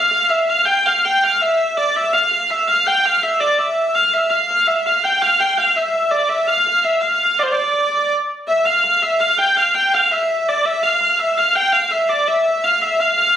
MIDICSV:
0, 0, Header, 1, 2, 480
1, 0, Start_track
1, 0, Tempo, 362538
1, 1116, Time_signature, 6, 3, 24, 8
1, 17698, End_track
2, 0, Start_track
2, 0, Title_t, "Hurdy-gurdy"
2, 0, Program_c, 0, 110
2, 0, Note_on_c, 0, 77, 78
2, 141, Note_off_c, 0, 77, 0
2, 141, Note_on_c, 0, 77, 88
2, 392, Note_off_c, 0, 77, 0
2, 392, Note_on_c, 0, 76, 80
2, 650, Note_off_c, 0, 76, 0
2, 650, Note_on_c, 0, 77, 81
2, 867, Note_off_c, 0, 77, 0
2, 867, Note_on_c, 0, 79, 90
2, 1139, Note_off_c, 0, 79, 0
2, 1139, Note_on_c, 0, 77, 90
2, 1387, Note_off_c, 0, 77, 0
2, 1387, Note_on_c, 0, 79, 89
2, 1633, Note_off_c, 0, 79, 0
2, 1633, Note_on_c, 0, 77, 86
2, 1870, Note_off_c, 0, 77, 0
2, 1870, Note_on_c, 0, 76, 85
2, 2343, Note_off_c, 0, 76, 0
2, 2343, Note_on_c, 0, 74, 83
2, 2598, Note_off_c, 0, 74, 0
2, 2598, Note_on_c, 0, 76, 87
2, 2825, Note_off_c, 0, 76, 0
2, 2825, Note_on_c, 0, 77, 82
2, 3061, Note_off_c, 0, 77, 0
2, 3061, Note_on_c, 0, 77, 85
2, 3314, Note_off_c, 0, 77, 0
2, 3314, Note_on_c, 0, 76, 83
2, 3543, Note_off_c, 0, 76, 0
2, 3543, Note_on_c, 0, 77, 80
2, 3796, Note_off_c, 0, 77, 0
2, 3796, Note_on_c, 0, 79, 88
2, 4042, Note_off_c, 0, 79, 0
2, 4042, Note_on_c, 0, 77, 92
2, 4275, Note_off_c, 0, 77, 0
2, 4275, Note_on_c, 0, 76, 77
2, 4504, Note_off_c, 0, 76, 0
2, 4504, Note_on_c, 0, 74, 78
2, 4753, Note_off_c, 0, 74, 0
2, 4753, Note_on_c, 0, 76, 75
2, 5231, Note_off_c, 0, 76, 0
2, 5231, Note_on_c, 0, 77, 77
2, 5472, Note_off_c, 0, 77, 0
2, 5472, Note_on_c, 0, 76, 81
2, 5695, Note_off_c, 0, 76, 0
2, 5695, Note_on_c, 0, 77, 79
2, 5962, Note_off_c, 0, 77, 0
2, 5962, Note_on_c, 0, 77, 83
2, 6184, Note_off_c, 0, 77, 0
2, 6184, Note_on_c, 0, 76, 80
2, 6435, Note_off_c, 0, 76, 0
2, 6435, Note_on_c, 0, 77, 74
2, 6670, Note_off_c, 0, 77, 0
2, 6670, Note_on_c, 0, 79, 79
2, 6911, Note_off_c, 0, 79, 0
2, 6911, Note_on_c, 0, 77, 86
2, 7146, Note_off_c, 0, 77, 0
2, 7146, Note_on_c, 0, 79, 78
2, 7382, Note_off_c, 0, 79, 0
2, 7382, Note_on_c, 0, 77, 84
2, 7624, Note_off_c, 0, 77, 0
2, 7624, Note_on_c, 0, 76, 73
2, 8093, Note_off_c, 0, 76, 0
2, 8093, Note_on_c, 0, 74, 70
2, 8333, Note_off_c, 0, 74, 0
2, 8333, Note_on_c, 0, 76, 82
2, 8573, Note_off_c, 0, 76, 0
2, 8573, Note_on_c, 0, 77, 76
2, 8827, Note_off_c, 0, 77, 0
2, 8827, Note_on_c, 0, 77, 82
2, 9056, Note_off_c, 0, 77, 0
2, 9056, Note_on_c, 0, 76, 74
2, 9286, Note_on_c, 0, 77, 73
2, 9290, Note_off_c, 0, 76, 0
2, 9788, Note_off_c, 0, 77, 0
2, 9788, Note_on_c, 0, 74, 66
2, 9839, Note_on_c, 0, 72, 56
2, 9862, Note_off_c, 0, 74, 0
2, 9953, Note_off_c, 0, 72, 0
2, 9953, Note_on_c, 0, 74, 68
2, 10725, Note_off_c, 0, 74, 0
2, 11226, Note_on_c, 0, 76, 90
2, 11456, Note_off_c, 0, 76, 0
2, 11456, Note_on_c, 0, 77, 81
2, 11703, Note_off_c, 0, 77, 0
2, 11703, Note_on_c, 0, 77, 92
2, 11945, Note_off_c, 0, 77, 0
2, 11945, Note_on_c, 0, 76, 83
2, 12184, Note_off_c, 0, 76, 0
2, 12184, Note_on_c, 0, 77, 82
2, 12421, Note_off_c, 0, 77, 0
2, 12421, Note_on_c, 0, 79, 95
2, 12669, Note_off_c, 0, 79, 0
2, 12669, Note_on_c, 0, 77, 93
2, 12903, Note_off_c, 0, 77, 0
2, 12903, Note_on_c, 0, 79, 90
2, 13153, Note_off_c, 0, 79, 0
2, 13153, Note_on_c, 0, 77, 89
2, 13390, Note_off_c, 0, 77, 0
2, 13390, Note_on_c, 0, 76, 90
2, 13886, Note_off_c, 0, 76, 0
2, 13886, Note_on_c, 0, 74, 81
2, 14105, Note_off_c, 0, 74, 0
2, 14105, Note_on_c, 0, 76, 91
2, 14336, Note_off_c, 0, 76, 0
2, 14336, Note_on_c, 0, 77, 86
2, 14574, Note_off_c, 0, 77, 0
2, 14574, Note_on_c, 0, 77, 86
2, 14818, Note_off_c, 0, 77, 0
2, 14818, Note_on_c, 0, 76, 86
2, 15058, Note_off_c, 0, 76, 0
2, 15058, Note_on_c, 0, 77, 80
2, 15296, Note_off_c, 0, 77, 0
2, 15296, Note_on_c, 0, 79, 94
2, 15525, Note_off_c, 0, 79, 0
2, 15525, Note_on_c, 0, 77, 94
2, 15765, Note_off_c, 0, 77, 0
2, 15765, Note_on_c, 0, 76, 83
2, 16010, Note_off_c, 0, 76, 0
2, 16010, Note_on_c, 0, 74, 79
2, 16255, Note_off_c, 0, 74, 0
2, 16255, Note_on_c, 0, 76, 80
2, 16732, Note_off_c, 0, 76, 0
2, 16732, Note_on_c, 0, 77, 82
2, 16967, Note_off_c, 0, 77, 0
2, 16967, Note_on_c, 0, 76, 88
2, 17211, Note_off_c, 0, 76, 0
2, 17211, Note_on_c, 0, 77, 81
2, 17444, Note_off_c, 0, 77, 0
2, 17444, Note_on_c, 0, 77, 87
2, 17684, Note_off_c, 0, 77, 0
2, 17698, End_track
0, 0, End_of_file